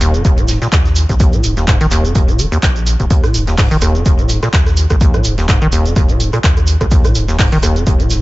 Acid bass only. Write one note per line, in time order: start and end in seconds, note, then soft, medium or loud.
0.01 0.16 D#2 loud
0.14 0.23 F2 loud
0.25 0.40 D#2 medium
0.38 0.50 A#2 medium
0.49 0.59 G#2 loud
0.62 0.68 A#2 medium
1.09 1.15 D#2 medium
1.20 1.35 D#2 medium
1.33 1.45 A#2 medium
1.44 1.55 G#2 loud
1.57 1.66 D#2 medium
1.68 1.78 G#2 medium
1.81 1.87 D#3 loud
1.91 2.06 D#2 loud
2.05 2.13 F2 loud
2.15 2.30 D#2 medium
2.28 2.40 A#2 medium
2.39 2.46 D#3 loud
2.52 2.58 D#2 loud
3.00 3.06 D#2 medium
3.10 3.25 D#2 medium
3.24 3.36 A#2 medium
3.34 3.45 G#2 loud
3.47 3.56 D#2 medium
3.58 3.69 G#2 medium
3.71 3.77 D#3 loud
3.82 3.97 D#2 loud
3.95 4.04 F2 loud
4.06 4.20 D#2 medium
4.19 4.31 A#2 medium
4.30 4.40 G#2 loud
4.43 4.49 A#2 medium
4.90 4.96 D#2 medium
5.01 5.16 D#2 medium
5.14 5.26 A#2 medium
5.25 5.36 G#2 medium
5.38 5.47 D#2 medium
5.48 5.59 G#2 medium
5.62 5.68 D#3 loud
5.72 5.87 D#2 loud
5.85 5.94 F2 loud
5.96 6.11 D#2 medium
6.09 6.21 A#2 medium
6.20 6.31 G#2 loud
6.33 6.39 A#2 medium
6.81 6.87 D#2 medium
6.91 7.06 D#2 medium
7.04 7.17 A#2 medium
7.15 7.26 G#2 loud
7.28 7.37 D#2 medium
7.39 7.50 G#2 medium
7.52 7.58 D#3 loud
7.63 7.78 D#2 loud
7.76 7.85 F2 loud
7.87 8.01 D#2 medium
8.00 8.12 A#2 medium
8.11 8.21 G#2 loud